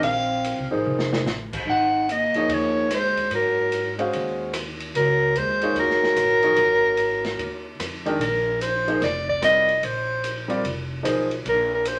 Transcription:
0.02 A#1 C4 F5, ride
0.44 hi-hat pedal, ride
0.58 C2
0.71 A1 F3 A#3 D#4 G#4 C5
0.85 F1
0.99 snare
1.13 snare
1.24 A1, snare, hi-hat pedal
1.53 kick, crash
1.67 G#1 D#4 F#5
2.09 A#3 D#5, hi-hat pedal, ride
2.33 F3 A#3 D#4 G#4 C#5, muted upright bass stroke, ride
2.48 D#2, ride
2.53 A#3 C#5
2.91 G#3, cross-stick, hi-hat pedal, ride
2.95 C5
3.16 D#2, ride
3.31 G#2 F#3, ride
3.35 A#4
3.72 hi-hat pedal, ride
3.99 G#3 C#4 F#4 C5 F5, ride
4.13 D#2, ride
4.53 cross-stick, hi-hat pedal, ride
4.80 ride
4.94 C#2 F#3 A#4, ride
5.35 D#2 G#3 C5, hi-hat pedal, ride
5.61 A#3 D#4 F4 G#4 C#5, ride
5.76 D#2 F#3 A#4, ride
5.90 snare
6.03 snare
6.16 A1, cross-stick, hi-hat pedal, ride
6.42 F3 A#3 D#4 G#4 C#5, ride
6.56 G#1, ride
6.97 hi-hat pedal, ride
7.25 snare, ride
7.38 D#2, ride
7.79 F2, cross-stick, hi-hat pedal, ride
8.06 D#3 G#3 D4 G4 A#4, ride
8.19 A#1 A#4, ride
8.61 C5, hi-hat pedal, ride
8.87 F3 A#3 D#4 G#4 C5, ride
9.01 F1 D5, snare, ride
9.28 D5, kick
9.41 G3 C4 F4 A#4 D5 D#5, cross-stick, hi-hat pedal, ride
9.69 ride
9.83 A#1 C5, ride
10.24 hi-hat pedal, ride
10.48 G3 C4 F4 A#4 D5, ride
10.64 F1, ride
11.03 B1 F3 A#3 D#4 G#4 C5, cross-stick, hi-hat pedal, ride
11.31 ride
11.45 A#1 A#4, ride
11.74 A#4
11.85 C5, hi-hat pedal, ride

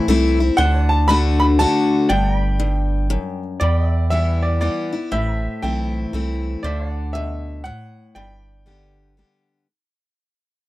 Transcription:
Already playing: C5 E5 A5
0.08 C2 E3 A3 C4 E4
0.40 C4 E4
0.57 D2 D3 C5 F#5 A5
0.83 D5
0.89 A5
1.08 D3 A3 D4 F#4 B5
1.40 B5
1.59 D3 A3 D4 F#4 A5
2.09 G1 G2 D5 F#5 G5 A5
2.31 G5
2.37 B5
2.60 G2
3.10 F#2
3.60 E2 D5 G5 B5
3.87 E5
4.10 E3 G3 B3 E4 E5
4.43 D5
4.61 E3 G3 B3 E4 D5
4.92 B3 E4
5.12 A1 A2 C5 E5 B5
5.39 A5
5.62 B1 E3 A3 C4 E4 G5
6.13 C2 E3 A3 C4 E4
6.63 D2 D3 C5 D5 E5 A5
6.90 D5 F#5
7.13 B2 E5
7.64 A2 F#5
8.15 G1 G2 D5 G5 B5
8.66 D3 G3 B3 G4
9.17 D3 G3 B3 G4

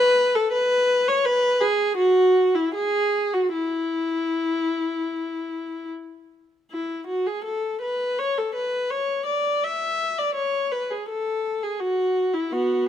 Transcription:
Already playing: B4
0.35 A4
0.52 B4
1.08 C#5
1.26 B4
1.61 G#4
1.97 F#4
2.55 E4
2.74 G#4
3.33 F#4
3.52 E4
6.71 E4
7.07 F#4
7.26 G#4
7.44 A4
7.81 B4
8.19 C#5
8.37 A4
8.55 B4
8.90 C#5
9.26 D5
9.64 E5
10.18 D5
10.35 C#5
10.71 B4
10.90 G#4
11.09 A4
11.62 G#4
11.80 F#4
12.34 E4
12.52 B3 F#4

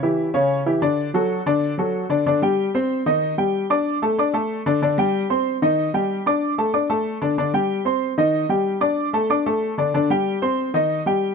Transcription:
0.03 E3 E4 G4
0.34 C#3 C#4 C#5
0.66 E3 E4 G4
0.82 D3 D4 D5
1.14 F#3 F#4 A4
1.46 D3 D4 D5
1.78 F#3 F#4 A4
2.09 D3 D4 D5
2.26 D3 D4 D5
2.42 G3 G4 G5
2.75 C4 C5 C6
3.06 D#3 D#4 D#5
3.38 G3 G4 G5
3.70 D4 D5 D6
4.02 A3 A4 A5
4.18 D4 D5 D6
4.34 A3 A4 A5
4.66 D3 D4 D5
4.82 D3 D4 D5
4.98 G3 G4 G5
5.30 C4 C5 C6
5.62 D#3 D#4 D#5
5.94 G3 G4 G5
6.26 D4 D5 D6
6.58 A3 A4 A5
6.74 D4 D5 D6
6.90 A3 A4 A5
7.22 D3 D4 D5
7.38 D3 D4 D5
7.54 G3 G4 G5
7.85 C4 C5 C6
8.18 D#3 D#4 D#5
8.49 G3 G4 G5
8.81 D4 D5 D6
9.13 A3 A4 A5
9.30 D4 D5 D6
9.46 A3 A4 A5
9.78 D3 D4 D5
9.94 D3 D4 D5
10.10 G3 G4 G5
10.42 C4 C5 C6
10.74 D#3 D#4 D#5
11.06 G3 G4 G5

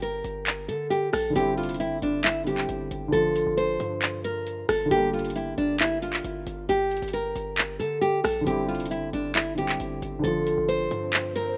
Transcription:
Already playing: G1 D3 G3 A#3 G4 A#4
0.02 A#4, closed hi-hat
0.24 G1, closed hi-hat
0.47 clap, closed hi-hat
0.68 D3 A4, closed hi-hat
0.90 G4, closed hi-hat
1.13 A#1 A4, cross-stick, open hi-hat
1.30 D3 G3
1.36 G1 C4 E4 G4, closed hi-hat
1.41 G4
1.57 F4, closed hi-hat
1.63 closed hi-hat
1.69 F1, closed hi-hat
1.74 closed hi-hat
1.80 E4, closed hi-hat
1.86 G1
2.02 G1 D4, closed hi-hat
2.24 E4, clap, closed hi-hat
2.44 D3 G3 C4 G4, closed hi-hat
2.48 E4 G4
2.58 clap
2.69 G1, closed hi-hat
2.91 G1, closed hi-hat
3.08 D3 F3
3.12 G1 F4 A4, closed hi-hat
3.36 closed hi-hat
3.47 G1
3.57 C5, closed hi-hat
3.80 G2, closed hi-hat
4.02 clap, closed hi-hat
4.24 A#4, closed hi-hat
4.47 closed hi-hat
4.69 G1 A4, cross-stick, open hi-hat
4.86 D3 G3
4.91 G1 A#3 G4, closed hi-hat
4.96 A#4
5.13 F4, closed hi-hat
5.19 closed hi-hat
5.24 closed hi-hat
5.30 closed hi-hat
5.36 E4, closed hi-hat
5.58 G1 D4, closed hi-hat
5.80 E4, clap, closed hi-hat
6.02 F4, closed hi-hat
6.13 clap
6.24 G1, closed hi-hat
6.47 G1, closed hi-hat
6.69 G1 G4, closed hi-hat
6.91 closed hi-hat
6.97 closed hi-hat
7.02 G1, closed hi-hat
7.08 closed hi-hat
7.13 A#4, closed hi-hat
7.36 G1, closed hi-hat
7.58 clap, closed hi-hat
7.80 D3 A4, closed hi-hat
8.01 G4, closed hi-hat
8.24 A#1 A4, cross-stick, open hi-hat
8.41 D3 G3
8.47 G1 C4 E4 G4, closed hi-hat, swell
8.52 G4
8.68 F4, closed hi-hat
8.74 closed hi-hat
8.80 F1, closed hi-hat
8.86 closed hi-hat
8.91 E4, closed hi-hat
8.97 G1
9.13 G1 D4, closed hi-hat
9.35 E4, clap, closed hi-hat
9.55 D3 G3 C4 G4, closed hi-hat
9.59 E4 G4
9.69 clap
9.80 G1, closed hi-hat
10.02 G1, closed hi-hat
10.19 D3 F3
10.24 G1 F4 A4, closed hi-hat
10.47 closed hi-hat
10.58 G1
10.69 C5, closed hi-hat
10.91 G2, closed hi-hat
11.13 clap, closed hi-hat
11.36 A#4, closed hi-hat

